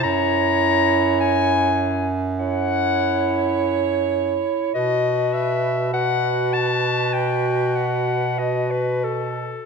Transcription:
X:1
M:4/4
L:1/16
Q:1/4=51
K:Bphr
V:1 name="Clarinet"
^a4 ^g3 z f6 z2 | ^d2 e2 f2 a2 g2 f2 d B A2 |]
V:2 name="Alto saxophone"
^c6- c z c8 | B4 B8 B2 A2 |]
V:3 name="Clarinet"
E6- E z E8 | F4 F8 F3 z |]
V:4 name="Bass clarinet" clef=bass
F,,12- F,,3 z | B,,16 |]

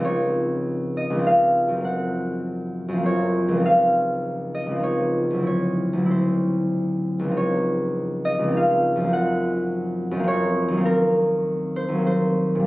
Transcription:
X:1
M:3/4
L:1/8
Q:1/4=100
K:Db
V:1 name="Harp"
d3 e f2 | g4 d2 | f3 e d2 | d2 c4 |
d3 e f2 | g4 d2 | [K:Ebdor] B3 c c2 |]
V:2 name="Harp" clef=bass
[D,,F,CE]4 [D,,F,CE]2 | [G,,F,B,C]4 [G,,F,B,C]2 | [D,,F,CE]4 [D,,F,CE]2 | [=D,,^F,C=E]2 [D,,F,CE]4 |
[D,,F,CE]4 [D,,F,CE]2 | [G,,F,B,C]4 [G,,F,B,C]2 | [K:Ebdor] [E,,G,B,C]4 [E,,G,B,C]2 |]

